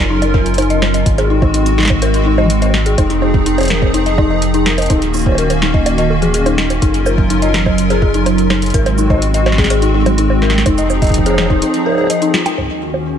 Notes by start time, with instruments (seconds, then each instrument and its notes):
Already playing: analog synth bass F#1, analog synth pad F#3 C#4 F4 A#4
0.10 synth bell D#4
0.22 closed hi-hat, high bongo
0.34 synth bell A#4, kick
0.46 closed hi-hat
0.54 closed hi-hat
0.58 synth bell D#4, closed hi-hat, high bongo
0.62 closed hi-hat
0.70 synth bell D#5, closed hi-hat
0.82 snare, high bongo
0.94 synth bell D#5, closed hi-hat
1.06 analog synth bass G#1, analog synth pad G#3 C4 F#4, kick, closed hi-hat
1.18 synth bell G#4, closed hi-hat, high bongo
1.30 synth bell D#4
1.42 synth bell D#4, kick, high bongo
1.54 synth bell D#4, closed hi-hat
1.66 closed hi-hat
1.78 synth bell D#4, snare
1.80 snare
1.83 snare
1.85 snare
1.88 kick, snare, high bongo
2.02 synth bell A#4, closed hi-hat, high bongo
2.14 closed hi-hat
2.26 synth bell D#4
2.38 synth bell D#5, high bongo, low conga
2.40 low conga
2.43 low conga
2.45 low conga
2.48 closed hi-hat, low conga
2.62 synth bell D#5, closed hi-hat, high bongo
2.66 high bongo
2.70 snare, high bongo
2.86 synth bell G#4, closed hi-hat
2.98 analog synth bass F1, analog synth pad F3 D#4 G#4, synth bell D#4, kick, closed hi-hat, high bongo
3.10 synth bell D#4, closed hi-hat
3.22 synth bell D#4, high bongo
3.34 kick
3.46 synth bell D#4, closed hi-hat
3.58 closed hi-hat, high bongo
3.61 closed hi-hat, high bongo
3.63 closed hi-hat, high bongo
3.65 closed hi-hat, high bongo
3.68 synth bell A#4, snare, closed hi-hat, high bongo, low conga
3.73 high bongo
3.76 high bongo
3.79 kick, high bongo
3.82 high bongo
3.86 high bongo
3.90 synth bell D#4, closed hi-hat, high bongo
3.94 high bongo
3.98 high bongo
4.02 closed hi-hat, high bongo
4.06 synth bell D#5
4.18 synth bell D#4, kick, high bongo
4.30 synth bell D#5
4.42 closed hi-hat
4.54 synth bell D#4, closed hi-hat
4.66 synth bell A#4, snare
4.78 synth bell D#5, closed hi-hat, high bongo
4.82 closed hi-hat
4.86 closed hi-hat
4.90 analog synth bass D#1, analog synth pad D#3 A#3 C#4 F#4, synth bell D#4, kick, closed hi-hat, high bongo
5.02 closed hi-hat
5.14 synth bell D#4, shaker
5.16 shaker
5.19 shaker
5.21 shaker
5.24 kick, high bongo, shaker
5.29 high bongo
5.32 high bongo
5.35 synth bell A#4, closed hi-hat, high bongo
5.50 closed hi-hat, high bongo
5.62 synth bell D#4, snare
5.74 synth bell D#5, kick
5.86 closed hi-hat, high bongo
5.98 synth bell D#5, closed hi-hat
6.10 high bongo
6.22 synth bell G#4, closed hi-hat, low conga
6.34 synth bell G#4, closed hi-hat
6.46 synth bell D#4, closed hi-hat, high bongo
6.58 synth bell D#4, snare
6.70 closed hi-hat, high bongo
6.82 analog synth bass F#1, analog synth pad F#3 F4 A#4, synth bell D#4, kick, closed hi-hat
6.94 closed hi-hat
7.06 synth bell A#4, high bongo, shaker
7.18 kick
7.30 synth bell D#4, closed hi-hat
7.42 synth bell D#5, closed hi-hat
7.54 snare, low conga
7.66 synth bell D#5, kick, high bongo
7.78 closed hi-hat
7.90 synth bell G#4, closed hi-hat, high bongo
8.02 synth bell G#4, kick
8.14 synth bell D#4, closed hi-hat
8.26 synth bell D#4, closed hi-hat, high bongo
8.38 closed hi-hat
8.50 synth bell D#4, snare, high bongo
8.62 closed hi-hat
8.66 closed hi-hat
8.70 analog synth bass G#1, kick, closed hi-hat
8.74 analog synth pad G#3 C4 F#4, synth bell A#4, closed hi-hat
8.86 closed hi-hat, high bongo
8.98 synth bell D#4, shaker
9.10 synth bell D#5, kick, high bongo
9.14 high bongo
9.18 closed hi-hat, high bongo
9.34 synth bell D#5, closed hi-hat
9.46 snare, high bongo
9.52 snare
9.58 synth bell G#4, kick, snare
9.64 snare
9.70 synth bell G#4, closed hi-hat, high bongo
9.82 synth bell D#4, closed hi-hat
9.94 synth bell D#4
10.06 closed hi-hat, high bongo, low conga
10.18 synth bell D#4, closed hi-hat
10.30 high bongo
10.42 synth bell A#4, snare
10.50 snare
10.58 snare
10.66 analog synth bass F1, analog synth pad F3 D#4 G#4, synth bell D#4, kick, closed hi-hat, high bongo
10.78 synth bell D#5, closed hi-hat, shaker
10.90 high bongo, shaker
11.02 synth bell D#5, kick, closed hi-hat
11.04 closed hi-hat
11.07 closed hi-hat
11.09 kick, closed hi-hat
11.12 closed hi-hat
11.14 kick, closed hi-hat
11.26 synth bell G#4, closed hi-hat, high bongo
11.30 high bongo
11.34 snare, high bongo
11.38 synth bell G#4, high bongo, low conga
11.42 high bongo
11.46 high bongo
11.50 synth bell D#4, kick, high bongo
11.53 high bongo
11.56 high bongo
11.59 closed hi-hat, high bongo
11.62 synth bell D#4, high bongo
11.65 high bongo
11.68 high bongo
11.71 closed hi-hat, high bongo
11.86 synth bell A#4, high bongo
11.89 high bongo
11.92 high bongo
11.95 high bongo
11.98 high bongo
12.01 high bongo
12.04 high bongo
12.07 closed hi-hat, high bongo
12.10 synth bell D#5, high bongo
12.22 synth bell D#4, closed hi-hat
12.34 synth bell F4, snare
12.46 synth bell D#4, closed hi-hat, high bongo
12.58 analog synth pad D#2 D#3 C#4 F#4, kick, high bongo
12.61 kick
12.64 kick
12.67 kick
12.94 high bongo